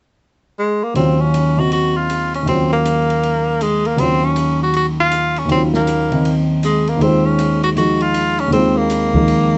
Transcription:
0.59 G#3
0.83 A#3
0.94 D#2 D#3 F#3 C4 C#4, ride
0.99 F4
1.21 C#4
1.34 hi-hat pedal, ride
1.57 D#3 C4 D#4 F#4
1.72 F#4, ride
1.97 F4
2.10 hi-hat pedal, ride
2.34 C#4, ride
2.43 D#2 D#3
2.47 F#3 C4, ride
2.52 C#4 F4
2.73 A#3
2.85 hi-hat pedal, ride
3.10 ride
3.23 ride
3.61 G#3, hi-hat pedal, ride
3.85 A#3, ride
3.96 D#2 D#3 F#3 C4 C#4, ride
4.01 F4
4.24 C#4
4.36 hi-hat pedal, ride
4.63 F#4
4.74 F#4, ride
5.00 F4
5.11 hi-hat pedal, ride
5.36 C#4, ride
5.45 D#2 D#3, ride
5.51 F#3 C4 C#4
5.56 F4
5.74 A#3, snare
5.87 hi-hat pedal, ride
6.11 D#3 C4 D#4, ride
6.25 ride
6.63 G#3, hi-hat pedal, ride
6.87 A#3, ride
6.96 D#2 D#3
7.01 G#3 C4 C5, ride
7.07 F4
7.26 C#4
7.39 hi-hat pedal, ride
7.63 F#4, ride
7.76 D#3 F3 G#3 D#4 F#4, ride
8.01 F4, ride
8.14 hi-hat pedal, ride
8.39 C#4, ride
8.48 D#2 D#3
8.52 G#3 C4, ride
8.58 F4
8.77 A#3
8.90 hi-hat pedal, ride
9.13 D#3 F3 G#3 D#4, kick
9.28 ride

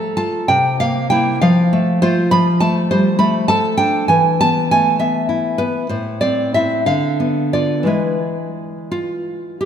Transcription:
Already playing: F3 G3 A3 A4 A#5
0.17 F4 A5
0.48 C3 G5
0.80 A#3 F5
1.10 A#3 E4 G5
1.41 F3 F5
1.73 A3
2.02 A3 F4 C5
2.31 F3 B5
2.60 A3 A5
2.91 G3 C5
3.19 A3 B5
3.48 A4 A5
3.77 D4 G5
4.08 E3 G#5
4.41 B3 A5
4.71 A3 G#5
4.99 B3 E5
5.29 E4
5.58 B3 B4
5.89 A2 C5
6.21 C4 D5
6.54 C4 E4 E5
6.86 D3 F5
7.20 B3
7.53 B3 F4 D5
7.83 E3 G#3 B4
7.87 E4
8.91 F4
9.61 G4

